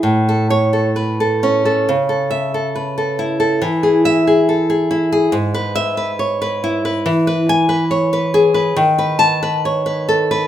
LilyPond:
\new Staff \with { instrumentName = "Nylon-string guitar" } { \time 2/4 \key a \major \tempo 4 = 69 << { r8 cis''8 r4 | r8 e''8 r4 | r8 e''8 r4 | r8 e''8 r4 |
\key e \major r8 gis''8 r4 | r8 a''8 r4 | } \\ { a,16 a'8 a'16 b'16 a'16 cis'16 a'16 | cis16 a'8 a'16 b'16 a'16 e'16 a'16 | e16 gis'8 gis'16 a'16 gis'16 e'16 gis'16 | gis,16 b'8 b'16 cis''16 b'16 e'16 b'16 |
e16 b'8 b'16 cis''16 b'16 gis'16 b'16 | dis16 b'8 b'16 cis''16 b'16 a'16 b'16 | } >> }